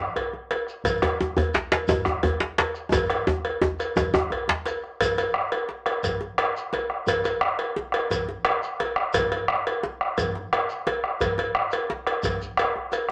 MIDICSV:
0, 0, Header, 1, 5, 480
1, 0, Start_track
1, 0, Tempo, 345224
1, 1175, Time_signature, 12, 3, 24, 8
1, 18241, End_track
2, 0, Start_track
2, 0, Title_t, "Bombo"
2, 216, Note_on_c, 9, 37, 34
2, 356, Note_off_c, 9, 37, 0
2, 927, Note_on_c, 9, 37, 33
2, 1066, Note_off_c, 9, 37, 0
2, 1165, Note_on_c, 9, 43, 93
2, 1304, Note_off_c, 9, 43, 0
2, 1421, Note_on_c, 9, 37, 72
2, 1560, Note_off_c, 9, 37, 0
2, 2609, Note_on_c, 9, 43, 105
2, 2748, Note_off_c, 9, 43, 0
2, 2851, Note_on_c, 9, 37, 82
2, 2990, Note_off_c, 9, 37, 0
2, 3099, Note_on_c, 9, 37, 33
2, 3239, Note_off_c, 9, 37, 0
2, 3816, Note_on_c, 9, 37, 31
2, 3955, Note_off_c, 9, 37, 0
2, 4057, Note_on_c, 9, 37, 32
2, 4057, Note_on_c, 9, 43, 96
2, 4196, Note_off_c, 9, 37, 0
2, 4196, Note_off_c, 9, 43, 0
2, 4305, Note_on_c, 9, 37, 71
2, 4444, Note_off_c, 9, 37, 0
2, 4796, Note_on_c, 9, 37, 29
2, 4935, Note_off_c, 9, 37, 0
2, 5276, Note_on_c, 9, 37, 30
2, 5415, Note_off_c, 9, 37, 0
2, 5503, Note_on_c, 9, 43, 96
2, 5642, Note_off_c, 9, 43, 0
2, 5764, Note_on_c, 9, 37, 74
2, 5903, Note_off_c, 9, 37, 0
2, 6007, Note_on_c, 9, 37, 31
2, 6146, Note_off_c, 9, 37, 0
2, 6723, Note_on_c, 9, 37, 28
2, 6862, Note_off_c, 9, 37, 0
2, 6960, Note_on_c, 9, 37, 24
2, 6960, Note_on_c, 9, 43, 78
2, 7099, Note_off_c, 9, 37, 0
2, 7099, Note_off_c, 9, 43, 0
2, 7197, Note_on_c, 9, 37, 27
2, 7336, Note_off_c, 9, 37, 0
2, 7426, Note_on_c, 9, 37, 85
2, 7565, Note_off_c, 9, 37, 0
2, 8145, Note_on_c, 9, 37, 67
2, 8284, Note_off_c, 9, 37, 0
2, 8386, Note_on_c, 9, 43, 78
2, 8525, Note_off_c, 9, 43, 0
2, 8872, Note_on_c, 9, 37, 90
2, 9011, Note_off_c, 9, 37, 0
2, 9353, Note_on_c, 9, 37, 21
2, 9492, Note_off_c, 9, 37, 0
2, 9591, Note_on_c, 9, 37, 63
2, 9730, Note_off_c, 9, 37, 0
2, 9824, Note_on_c, 9, 37, 25
2, 9824, Note_on_c, 9, 43, 80
2, 9963, Note_off_c, 9, 37, 0
2, 9963, Note_off_c, 9, 43, 0
2, 10066, Note_on_c, 9, 37, 25
2, 10205, Note_off_c, 9, 37, 0
2, 10305, Note_on_c, 9, 37, 86
2, 10444, Note_off_c, 9, 37, 0
2, 11015, Note_on_c, 9, 37, 68
2, 11154, Note_off_c, 9, 37, 0
2, 11266, Note_on_c, 9, 43, 87
2, 11405, Note_off_c, 9, 43, 0
2, 11744, Note_on_c, 9, 37, 93
2, 11883, Note_off_c, 9, 37, 0
2, 12227, Note_on_c, 9, 37, 27
2, 12366, Note_off_c, 9, 37, 0
2, 12460, Note_on_c, 9, 37, 82
2, 12599, Note_off_c, 9, 37, 0
2, 12706, Note_on_c, 9, 43, 101
2, 12845, Note_off_c, 9, 43, 0
2, 12961, Note_on_c, 9, 37, 32
2, 13100, Note_off_c, 9, 37, 0
2, 13185, Note_on_c, 9, 37, 94
2, 13324, Note_off_c, 9, 37, 0
2, 13918, Note_on_c, 9, 37, 75
2, 14057, Note_off_c, 9, 37, 0
2, 14148, Note_on_c, 9, 43, 95
2, 14287, Note_off_c, 9, 43, 0
2, 14637, Note_on_c, 9, 37, 91
2, 14776, Note_off_c, 9, 37, 0
2, 15115, Note_on_c, 9, 37, 25
2, 15254, Note_off_c, 9, 37, 0
2, 15347, Note_on_c, 9, 37, 70
2, 15486, Note_off_c, 9, 37, 0
2, 15581, Note_on_c, 9, 37, 27
2, 15581, Note_on_c, 9, 43, 90
2, 15720, Note_off_c, 9, 37, 0
2, 15720, Note_off_c, 9, 43, 0
2, 16057, Note_on_c, 9, 37, 79
2, 16196, Note_off_c, 9, 37, 0
2, 16537, Note_on_c, 9, 37, 26
2, 16676, Note_off_c, 9, 37, 0
2, 16777, Note_on_c, 9, 37, 66
2, 16916, Note_off_c, 9, 37, 0
2, 17006, Note_on_c, 9, 37, 24
2, 17006, Note_on_c, 9, 43, 87
2, 17145, Note_off_c, 9, 37, 0
2, 17145, Note_off_c, 9, 43, 0
2, 17483, Note_on_c, 9, 37, 93
2, 17623, Note_off_c, 9, 37, 0
2, 17971, Note_on_c, 9, 37, 25
2, 18110, Note_off_c, 9, 37, 0
2, 18195, Note_on_c, 9, 37, 66
2, 18241, Note_off_c, 9, 37, 0
2, 18241, End_track
3, 0, Start_track
3, 0, Title_t, "Djembe"
3, 221, Note_on_c, 9, 64, 72
3, 360, Note_off_c, 9, 64, 0
3, 464, Note_on_c, 9, 63, 61
3, 603, Note_off_c, 9, 63, 0
3, 705, Note_on_c, 9, 62, 73
3, 844, Note_off_c, 9, 62, 0
3, 1187, Note_on_c, 9, 62, 24
3, 1187, Note_on_c, 9, 63, 78
3, 1187, Note_on_c, 9, 64, 76
3, 1326, Note_off_c, 9, 62, 0
3, 1326, Note_off_c, 9, 63, 0
3, 1326, Note_off_c, 9, 64, 0
3, 1425, Note_on_c, 9, 63, 95
3, 1426, Note_on_c, 9, 62, 55
3, 1564, Note_off_c, 9, 63, 0
3, 1565, Note_off_c, 9, 62, 0
3, 1676, Note_on_c, 9, 63, 72
3, 1815, Note_off_c, 9, 63, 0
3, 1898, Note_on_c, 9, 62, 23
3, 1898, Note_on_c, 9, 63, 51
3, 1899, Note_on_c, 9, 64, 79
3, 2037, Note_off_c, 9, 62, 0
3, 2037, Note_off_c, 9, 63, 0
3, 2038, Note_off_c, 9, 64, 0
3, 2146, Note_on_c, 9, 62, 75
3, 2146, Note_on_c, 9, 64, 77
3, 2151, Note_off_c, 9, 62, 0
3, 2151, Note_on_c, 9, 62, 82
3, 2285, Note_off_c, 9, 64, 0
3, 2290, Note_off_c, 9, 62, 0
3, 2389, Note_on_c, 9, 62, 88
3, 2528, Note_off_c, 9, 62, 0
3, 2626, Note_on_c, 9, 63, 105
3, 2627, Note_off_c, 9, 63, 0
3, 2627, Note_on_c, 9, 62, 26
3, 2627, Note_on_c, 9, 63, 81
3, 2766, Note_off_c, 9, 62, 0
3, 2766, Note_off_c, 9, 63, 0
3, 2860, Note_on_c, 9, 63, 76
3, 2866, Note_on_c, 9, 62, 53
3, 2999, Note_off_c, 9, 63, 0
3, 3005, Note_off_c, 9, 62, 0
3, 3105, Note_on_c, 9, 64, 78
3, 3106, Note_off_c, 9, 64, 0
3, 3106, Note_on_c, 9, 64, 79
3, 3245, Note_off_c, 9, 64, 0
3, 3342, Note_on_c, 9, 62, 69
3, 3356, Note_on_c, 9, 63, 56
3, 3481, Note_off_c, 9, 62, 0
3, 3495, Note_off_c, 9, 63, 0
3, 3592, Note_on_c, 9, 62, 86
3, 3593, Note_off_c, 9, 62, 0
3, 3593, Note_on_c, 9, 62, 83
3, 3732, Note_off_c, 9, 62, 0
3, 4065, Note_on_c, 9, 63, 97
3, 4073, Note_off_c, 9, 63, 0
3, 4073, Note_on_c, 9, 63, 84
3, 4073, Note_on_c, 9, 64, 86
3, 4212, Note_off_c, 9, 63, 0
3, 4212, Note_off_c, 9, 64, 0
3, 4313, Note_on_c, 9, 62, 62
3, 4452, Note_off_c, 9, 62, 0
3, 4548, Note_on_c, 9, 63, 99
3, 4687, Note_off_c, 9, 63, 0
3, 4792, Note_on_c, 9, 63, 60
3, 4931, Note_off_c, 9, 63, 0
3, 5027, Note_on_c, 9, 63, 101
3, 5031, Note_on_c, 9, 62, 73
3, 5031, Note_on_c, 9, 64, 81
3, 5166, Note_off_c, 9, 63, 0
3, 5170, Note_off_c, 9, 62, 0
3, 5170, Note_off_c, 9, 64, 0
3, 5282, Note_on_c, 9, 62, 23
3, 5421, Note_off_c, 9, 62, 0
3, 5515, Note_on_c, 9, 63, 98
3, 5521, Note_off_c, 9, 63, 0
3, 5521, Note_on_c, 9, 62, 26
3, 5521, Note_on_c, 9, 63, 79
3, 5660, Note_off_c, 9, 62, 0
3, 5660, Note_off_c, 9, 63, 0
3, 5753, Note_on_c, 9, 63, 101
3, 5758, Note_on_c, 9, 62, 60
3, 5892, Note_off_c, 9, 63, 0
3, 5897, Note_off_c, 9, 62, 0
3, 5984, Note_on_c, 9, 62, 25
3, 5984, Note_on_c, 9, 64, 77
3, 6123, Note_off_c, 9, 62, 0
3, 6123, Note_off_c, 9, 64, 0
3, 6226, Note_on_c, 9, 63, 57
3, 6244, Note_on_c, 9, 62, 94
3, 6365, Note_off_c, 9, 63, 0
3, 6383, Note_off_c, 9, 62, 0
3, 6472, Note_on_c, 9, 62, 78
3, 6611, Note_off_c, 9, 62, 0
3, 6719, Note_on_c, 9, 62, 23
3, 6858, Note_off_c, 9, 62, 0
3, 6959, Note_on_c, 9, 64, 75
3, 7098, Note_off_c, 9, 64, 0
3, 7198, Note_on_c, 9, 62, 47
3, 7198, Note_on_c, 9, 63, 50
3, 7337, Note_off_c, 9, 62, 0
3, 7337, Note_off_c, 9, 63, 0
3, 7907, Note_on_c, 9, 62, 59
3, 8046, Note_off_c, 9, 62, 0
3, 8398, Note_on_c, 9, 64, 71
3, 8537, Note_off_c, 9, 64, 0
3, 8630, Note_on_c, 9, 62, 52
3, 8630, Note_on_c, 9, 63, 52
3, 8769, Note_off_c, 9, 62, 0
3, 8769, Note_off_c, 9, 63, 0
3, 9354, Note_on_c, 9, 62, 63
3, 9354, Note_on_c, 9, 63, 74
3, 9493, Note_off_c, 9, 62, 0
3, 9493, Note_off_c, 9, 63, 0
3, 9598, Note_on_c, 9, 62, 21
3, 9737, Note_off_c, 9, 62, 0
3, 9833, Note_on_c, 9, 64, 83
3, 9972, Note_off_c, 9, 64, 0
3, 10082, Note_on_c, 9, 62, 50
3, 10082, Note_on_c, 9, 63, 57
3, 10222, Note_off_c, 9, 62, 0
3, 10222, Note_off_c, 9, 63, 0
3, 10795, Note_on_c, 9, 62, 66
3, 10795, Note_on_c, 9, 63, 62
3, 10934, Note_off_c, 9, 62, 0
3, 10934, Note_off_c, 9, 63, 0
3, 11278, Note_on_c, 9, 64, 73
3, 11417, Note_off_c, 9, 64, 0
3, 11521, Note_on_c, 9, 62, 50
3, 11521, Note_on_c, 9, 63, 49
3, 11660, Note_off_c, 9, 62, 0
3, 11660, Note_off_c, 9, 63, 0
3, 12236, Note_on_c, 9, 62, 61
3, 12236, Note_on_c, 9, 63, 61
3, 12375, Note_off_c, 9, 62, 0
3, 12375, Note_off_c, 9, 63, 0
3, 12477, Note_on_c, 9, 62, 20
3, 12616, Note_off_c, 9, 62, 0
3, 12719, Note_on_c, 9, 64, 63
3, 12858, Note_off_c, 9, 64, 0
3, 12957, Note_on_c, 9, 63, 44
3, 13096, Note_off_c, 9, 63, 0
3, 13673, Note_on_c, 9, 62, 65
3, 13673, Note_on_c, 9, 63, 64
3, 13812, Note_off_c, 9, 62, 0
3, 13812, Note_off_c, 9, 63, 0
3, 14157, Note_on_c, 9, 64, 72
3, 14296, Note_off_c, 9, 64, 0
3, 14395, Note_on_c, 9, 62, 49
3, 14395, Note_on_c, 9, 63, 47
3, 14534, Note_off_c, 9, 62, 0
3, 14534, Note_off_c, 9, 63, 0
3, 15110, Note_on_c, 9, 62, 74
3, 15110, Note_on_c, 9, 63, 72
3, 15249, Note_off_c, 9, 62, 0
3, 15249, Note_off_c, 9, 63, 0
3, 15354, Note_on_c, 9, 62, 24
3, 15493, Note_off_c, 9, 62, 0
3, 15580, Note_on_c, 9, 64, 82
3, 15719, Note_off_c, 9, 64, 0
3, 15821, Note_on_c, 9, 62, 57
3, 15821, Note_on_c, 9, 63, 59
3, 15960, Note_off_c, 9, 62, 0
3, 15960, Note_off_c, 9, 63, 0
3, 16544, Note_on_c, 9, 62, 72
3, 16544, Note_on_c, 9, 63, 76
3, 16683, Note_off_c, 9, 62, 0
3, 16683, Note_off_c, 9, 63, 0
3, 16782, Note_on_c, 9, 62, 24
3, 16921, Note_off_c, 9, 62, 0
3, 17026, Note_on_c, 9, 64, 83
3, 17165, Note_off_c, 9, 64, 0
3, 17271, Note_on_c, 9, 64, 40
3, 17410, Note_off_c, 9, 64, 0
3, 17504, Note_on_c, 9, 64, 46
3, 17643, Note_off_c, 9, 64, 0
3, 17737, Note_on_c, 9, 64, 49
3, 17876, Note_off_c, 9, 64, 0
3, 17962, Note_on_c, 9, 62, 52
3, 18101, Note_off_c, 9, 62, 0
3, 18241, End_track
4, 0, Start_track
4, 0, Title_t, "Shekere"
4, 952, Note_on_c, 9, 82, 15
4, 1091, Note_off_c, 9, 82, 0
4, 1193, Note_on_c, 9, 82, 50
4, 1332, Note_off_c, 9, 82, 0
4, 2142, Note_on_c, 9, 82, 19
4, 2282, Note_off_c, 9, 82, 0
4, 2616, Note_on_c, 9, 82, 52
4, 2755, Note_off_c, 9, 82, 0
4, 3825, Note_on_c, 9, 82, 17
4, 3964, Note_off_c, 9, 82, 0
4, 4069, Note_on_c, 9, 82, 55
4, 4208, Note_off_c, 9, 82, 0
4, 5282, Note_on_c, 9, 82, 20
4, 5421, Note_off_c, 9, 82, 0
4, 5513, Note_on_c, 9, 82, 65
4, 5652, Note_off_c, 9, 82, 0
4, 6491, Note_on_c, 9, 82, 20
4, 6630, Note_off_c, 9, 82, 0
4, 6977, Note_on_c, 9, 82, 60
4, 7116, Note_off_c, 9, 82, 0
4, 7215, Note_on_c, 9, 82, 18
4, 7354, Note_off_c, 9, 82, 0
4, 8398, Note_on_c, 9, 82, 56
4, 8537, Note_off_c, 9, 82, 0
4, 9129, Note_on_c, 9, 82, 16
4, 9268, Note_off_c, 9, 82, 0
4, 9839, Note_on_c, 9, 82, 54
4, 9978, Note_off_c, 9, 82, 0
4, 10077, Note_on_c, 9, 82, 19
4, 10216, Note_off_c, 9, 82, 0
4, 11281, Note_on_c, 9, 82, 57
4, 11420, Note_off_c, 9, 82, 0
4, 11997, Note_on_c, 9, 82, 16
4, 12136, Note_off_c, 9, 82, 0
4, 12704, Note_on_c, 9, 82, 59
4, 12843, Note_off_c, 9, 82, 0
4, 14156, Note_on_c, 9, 82, 55
4, 14295, Note_off_c, 9, 82, 0
4, 14871, Note_on_c, 9, 82, 15
4, 15010, Note_off_c, 9, 82, 0
4, 15587, Note_on_c, 9, 82, 50
4, 15726, Note_off_c, 9, 82, 0
4, 16286, Note_on_c, 9, 82, 17
4, 16425, Note_off_c, 9, 82, 0
4, 17008, Note_on_c, 9, 82, 51
4, 17147, Note_off_c, 9, 82, 0
4, 17263, Note_on_c, 9, 82, 15
4, 17402, Note_off_c, 9, 82, 0
4, 17501, Note_on_c, 9, 82, 16
4, 17640, Note_off_c, 9, 82, 0
4, 17971, Note_on_c, 9, 82, 18
4, 18110, Note_off_c, 9, 82, 0
4, 18241, End_track
5, 0, Start_track
5, 0, Title_t, "Drums"
5, 228, Note_on_c, 9, 56, 48
5, 367, Note_off_c, 9, 56, 0
5, 705, Note_on_c, 9, 56, 48
5, 845, Note_off_c, 9, 56, 0
5, 1182, Note_on_c, 9, 56, 57
5, 1321, Note_off_c, 9, 56, 0
5, 1428, Note_on_c, 9, 56, 53
5, 1567, Note_off_c, 9, 56, 0
5, 1914, Note_on_c, 9, 56, 47
5, 2053, Note_off_c, 9, 56, 0
5, 2391, Note_on_c, 9, 56, 44
5, 2530, Note_off_c, 9, 56, 0
5, 2625, Note_on_c, 9, 56, 50
5, 2765, Note_off_c, 9, 56, 0
5, 3101, Note_on_c, 9, 56, 48
5, 3240, Note_off_c, 9, 56, 0
5, 3592, Note_on_c, 9, 56, 53
5, 3731, Note_off_c, 9, 56, 0
5, 4067, Note_on_c, 9, 56, 61
5, 4206, Note_off_c, 9, 56, 0
5, 4313, Note_on_c, 9, 56, 49
5, 4452, Note_off_c, 9, 56, 0
5, 4793, Note_on_c, 9, 56, 47
5, 4932, Note_off_c, 9, 56, 0
5, 5284, Note_on_c, 9, 56, 45
5, 5423, Note_off_c, 9, 56, 0
5, 5524, Note_on_c, 9, 56, 46
5, 5663, Note_off_c, 9, 56, 0
5, 6007, Note_on_c, 9, 56, 46
5, 6146, Note_off_c, 9, 56, 0
5, 6483, Note_on_c, 9, 56, 44
5, 6622, Note_off_c, 9, 56, 0
5, 6960, Note_on_c, 9, 56, 65
5, 7099, Note_off_c, 9, 56, 0
5, 7206, Note_on_c, 9, 56, 56
5, 7345, Note_off_c, 9, 56, 0
5, 7675, Note_on_c, 9, 56, 49
5, 7814, Note_off_c, 9, 56, 0
5, 8152, Note_on_c, 9, 56, 49
5, 8291, Note_off_c, 9, 56, 0
5, 8398, Note_on_c, 9, 56, 50
5, 8537, Note_off_c, 9, 56, 0
5, 8880, Note_on_c, 9, 56, 49
5, 9019, Note_off_c, 9, 56, 0
5, 9366, Note_on_c, 9, 56, 50
5, 9505, Note_off_c, 9, 56, 0
5, 9851, Note_on_c, 9, 56, 64
5, 9990, Note_off_c, 9, 56, 0
5, 10085, Note_on_c, 9, 56, 54
5, 10224, Note_off_c, 9, 56, 0
5, 10551, Note_on_c, 9, 56, 46
5, 10691, Note_off_c, 9, 56, 0
5, 11040, Note_on_c, 9, 56, 52
5, 11179, Note_off_c, 9, 56, 0
5, 11281, Note_on_c, 9, 56, 52
5, 11420, Note_off_c, 9, 56, 0
5, 11750, Note_on_c, 9, 56, 53
5, 11889, Note_off_c, 9, 56, 0
5, 12237, Note_on_c, 9, 56, 55
5, 12376, Note_off_c, 9, 56, 0
5, 12714, Note_on_c, 9, 56, 70
5, 12853, Note_off_c, 9, 56, 0
5, 12956, Note_on_c, 9, 56, 54
5, 13095, Note_off_c, 9, 56, 0
5, 13443, Note_on_c, 9, 56, 49
5, 13582, Note_off_c, 9, 56, 0
5, 14150, Note_on_c, 9, 56, 50
5, 14289, Note_off_c, 9, 56, 0
5, 14644, Note_on_c, 9, 56, 51
5, 14783, Note_off_c, 9, 56, 0
5, 15116, Note_on_c, 9, 56, 54
5, 15255, Note_off_c, 9, 56, 0
5, 15590, Note_on_c, 9, 56, 62
5, 15729, Note_off_c, 9, 56, 0
5, 15836, Note_on_c, 9, 56, 51
5, 15975, Note_off_c, 9, 56, 0
5, 16311, Note_on_c, 9, 56, 50
5, 16450, Note_off_c, 9, 56, 0
5, 16785, Note_on_c, 9, 56, 48
5, 16924, Note_off_c, 9, 56, 0
5, 17037, Note_on_c, 9, 56, 49
5, 17176, Note_off_c, 9, 56, 0
5, 17511, Note_on_c, 9, 56, 54
5, 17650, Note_off_c, 9, 56, 0
5, 17979, Note_on_c, 9, 56, 50
5, 18118, Note_off_c, 9, 56, 0
5, 18241, End_track
0, 0, End_of_file